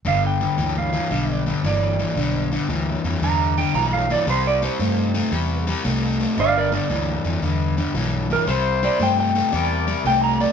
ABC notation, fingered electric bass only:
X:1
M:4/4
L:1/8
Q:"Swing" 1/4=114
K:C
V:1 name="Fingered electric bass" clef=bass
G,,,2 D,,2 B,,,2 G,,,2 | B,,,2 D,, F,, E,,2 B,,,2 | C,,2 G,,2 E,,2 C,,2 | G,,,2 D,, F,, E,,2 B,,,2 |
C,,2 G,,2 E,,2 C,,2 |]